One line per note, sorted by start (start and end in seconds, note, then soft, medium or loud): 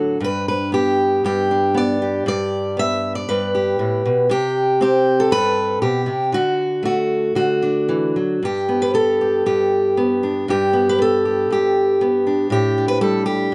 0.00 0.17 A2 medium
0.00 0.17 D3 medium
0.00 0.17 F#3 medium
0.00 1.51 D4 soft
0.00 0.17 F#4 soft
0.00 0.20 A4 medium
0.20 1.24 G2 medium
0.24 0.47 B4 medium
0.48 0.73 B4 medium
0.72 1.73 B3 medium
0.72 1.24 G4 medium
1.24 2.25 G2 medium
1.24 1.76 G4 loud
1.51 2.25 D4 soft
1.74 2.23 B3 medium
1.74 2.27 D5 loud
2.02 3.28 G4 soft
2.26 3.28 G2 medium
2.26 2.79 D5 loud
2.77 4.27 B3 medium
2.77 3.15 E5 loud
3.15 3.54 D5 loud
3.29 3.79 G2 medium
3.29 4.30 B4 loud
3.55 4.30 G4 medium
3.79 4.05 A2 medium
4.05 4.31 B2 medium
4.30 5.31 C3 medium
4.30 4.81 G4 loud
4.81 6.29 C4 medium
4.81 5.32 G4 loud
5.20 5.82 A4 loud
5.31 5.81 G2 medium
5.31 5.81 B4 loud
5.82 6.07 B2 medium
5.82 6.32 G4 medium
6.06 6.32 C3 medium
6.32 7.34 D3 medium
6.32 6.84 F#4 loud
6.83 8.15 A3 medium
6.83 7.35 F#4 medium
7.35 8.39 D3 medium
7.35 8.42 F#4 medium
7.62 8.39 D4 soft
7.89 8.15 E3 medium
8.16 8.42 F#3 medium
8.43 9.45 G2 medium
8.43 9.20 G4 medium
8.69 8.93 B3 soft
8.82 8.94 B4 medium
8.94 9.96 B3 medium
8.94 9.97 A4 medium
9.21 9.46 G4 soft
9.46 10.47 G2 medium
9.46 10.48 G4 medium
9.97 10.45 B3 medium
10.23 10.89 D4 soft
10.48 11.49 G2 medium
10.48 11.24 G4 medium
10.73 10.97 B3 soft
10.89 11.00 B4 medium
10.98 12.00 B3 medium
10.98 12.02 A4 medium
11.25 11.52 G4 soft
11.51 12.50 G2 medium
11.51 12.51 G4 medium
12.01 12.48 B3 medium
12.27 12.78 D4 soft
12.50 13.52 A2 medium
12.50 12.88 G4 loud
12.78 13.55 D4 soft
12.88 13.01 B4 loud
13.01 13.55 G3 medium
13.01 13.25 A4 loud
13.26 13.55 G4 medium